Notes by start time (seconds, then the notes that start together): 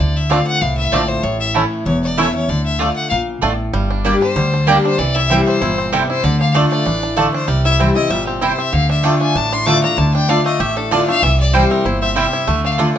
0.00 D2 D3 D5
0.17 E5
0.30 D3 A3 C4 D4 F4 D5 F5 A5
0.47 F#5
0.61 C2 A2 F5
0.78 E5
0.92 A#1 D3 A3 C4 D4 F4 D5 A5
1.09 C5
1.23 A1 A2 C#5
1.40 E5
1.54 E3 A3 C#4 E4 C#5 A5
1.86 E1 E2 C#5
2.03 D5
2.17 E3 A3 C#4 E4 C#5 E5 A5
2.34 C#4 E4 C#5
2.48 D2 D3 D5
2.66 E5
2.79 D3 A3 D4 F4 D5 F5 A5
2.96 F#5
3.09 A#1 A#2 F5
3.42 A1 A2 A3 D4 F4 D5 A5
3.73 G1 G2 G3
3.91 D4
4.04 G3 A#3 D4 G4 D5 G5
4.22 D4 G4 C5
4.36 D2 D3 G3
4.54 D4
4.67 G3 A#3 D4 G4 A#4 D5 G5
4.85 D4 C5
4.99 C2 C3 E3 D5
5.15 E4 E5
5.29 E3 G3 C4 E4 C5 G5
5.46 C4 C5
5.61 G1 A#2 E4
5.78 C4
5.92 C3 G3 C4 E4 A4 C5 G5
6.08 E4 C5
6.24 D2 D3 D5
6.41 D4 F5
6.54 D3 A3 D4 F4 D5 A5
6.70 D4 D5
6.85 A1 E3 D4
7.03 D4
7.17 D3 A3 F4 A4 D5 A5
7.34 D4 C5
7.48 C2 C3 G3 D5
7.65 E4 E5
7.78 E3 G3 C4 E4 C5 G5
7.95 C4 E4 D#5
8.10 G1 A#2 G3 E5
8.27 C4 G4
8.41 C3 C4 E4 C5 G5
8.58 C4 E5
8.73 D2 D3 F5
8.90 D4 E5
9.03 D3 A3 D4 F4 D5 G5 A5
9.21 D4 G#5
9.35 A1 A2 D4 A5
9.52 D4 C6
9.66 D3 A3 D4 F4 D5 A5 D6
9.82 D4 F4 A#5
9.97 D2 D3 D4 A5
10.15 D4 G5
10.28 D3 A3 D4 F4 D5 F5 A5
10.46 A3 D#5
10.60 A1 A2 G4 E5
10.77 D4 A4
10.91 D3 A3 D4 F4 D5 A5
11.08 A3 D4 F4 F5
11.22 C2 C3 E3 E5
11.40 D5
11.53 E3 G3 C4 E4 C5 G5
11.71 C4 A#4
11.85 G1 A#2 E4 C5
12.01 C4 E5
12.16 C3 G3 C4 E4 C5 E5 G5
12.33 E4
12.47 D2 D3 A3
12.65 D4 F5
12.78 D3 A3 D4 F4 D5 A5